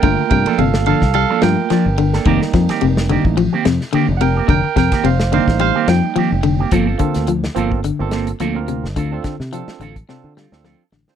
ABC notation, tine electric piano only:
X:1
M:4/4
L:1/16
Q:"Swing 16ths" 1/4=108
K:Gm
V:1 name="Tine electric piano"
[Bg]2 [Bg]2 [Af]2 [Af]2 [Af]2 [Bg]6- | [Bg]6 z8 [B^fg]2 | [Bg]2 [Bg]2 [cf]2 [cf]2 [cf]2 g6 | z2 [B,CFA]2 z2 [B,CFA]2 z [B,CFA]2 z2 [B,CFB]2 z |
z [CDFA]2 z [CDFA]2 z2 [CDFA]2 z [CDFA]2 z2 [CDFc] |]
V:2 name="Tine electric piano"
[A,B,F]6 z4 [A,B,F]2 z4 | [G,B,E]6 [G,B,E]2 z8 | z6 [G,B,E]8- [G,B,E]2 | z16 |
z16 |]